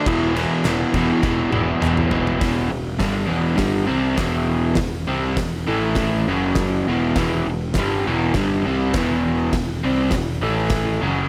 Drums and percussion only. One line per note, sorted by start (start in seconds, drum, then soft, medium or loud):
0.06 kick loud
0.06 ride loud
0.36 ride medium
0.65 snare loud
0.65 clap medium
0.65 ride loud
0.94 kick medium
0.94 ride medium
1.23 kick loud
1.23 snare medium
1.52 high tom medium
1.82 clap loud
1.82 mid tom loud
1.97 mid tom medium
2.11 floor tom loud
2.27 floor tom medium
2.41 kick loud
2.41 snare loud
2.41 open hi-hat medium
3.00 kick loud
3.00 snare loud
3.00 clap medium
3.00 open hi-hat medium
3.58 kick loud
3.58 snare loud
3.58 open hi-hat medium
4.18 kick loud
4.18 snare loud
4.18 clap loud
4.18 open hi-hat medium
4.75 kick loud
4.75 snare loud
4.75 open hi-hat medium
5.37 kick loud
5.37 snare loud
5.37 clap loud
5.37 open hi-hat medium
5.95 kick loud
5.95 snare loud
5.95 open hi-hat medium
6.55 kick loud
6.55 snare loud
6.55 clap loud
6.55 open hi-hat medium
7.16 kick loud
7.16 snare loud
7.16 open hi-hat medium
7.74 kick loud
7.74 snare loud
7.74 clap medium
7.74 open hi-hat medium
8.34 kick loud
8.34 snare loud
8.34 open hi-hat medium
8.94 kick loud
8.94 snare loud
8.94 clap loud
8.94 open hi-hat medium
9.53 kick loud
9.53 snare loud
9.53 open hi-hat medium
10.11 kick loud
10.11 snare loud
10.11 clap medium
10.11 open hi-hat medium
10.70 kick loud
10.70 snare loud
10.70 open hi-hat medium